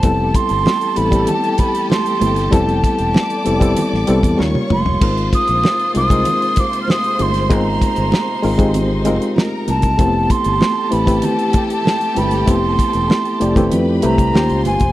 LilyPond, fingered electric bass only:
\new Staff \with { instrumentName = "Fingered electric bass" } { \clef bass \time 4/4 \key f \lydian \tempo 4 = 96 f,,8 r16 g,,16 r8 a,,8 r4. g,,8 | f,,8 r16 e,,16 r8 f,,8 r16 a,,16 c,16 e,16 ees,16 r16 f,,8 | aes,,8 r16 bes,,16 r8 c,8 r4. g,,8 | aes,,8 r16 g,,16 r8 aes,,4~ aes,,16 r8. c,8 |
f,,8 r16 g,,16 r8 a,,8 r4. g,,8 | f,,8 r16 e,,16 r8 f,,8 f,8 c,8 ees,16 des,16 g,,16 f,,16 | }